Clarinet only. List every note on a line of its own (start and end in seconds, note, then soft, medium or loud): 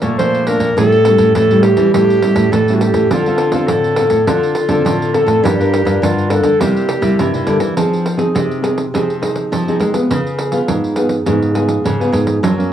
0.18 0.49 C5 loud
0.48 0.77 A#4 loud
0.78 1.32 A4 loud
1.36 1.64 A4 medium
1.63 1.93 G4 medium
1.94 2.54 G4 loud
2.52 2.77 A4 medium
2.75 2.83 F#4 medium
2.81 3.13 G4 medium
3.12 3.70 F4 loud
3.68 4.29 A4 medium
4.28 4.86 F4 medium
4.86 5.16 F4 medium
5.14 5.46 A4 medium
5.44 6.02 G4 loud
6.03 6.32 F4 medium
6.30 6.62 A4 medium
6.60 7.22 G4 medium
7.21 7.78 E4 medium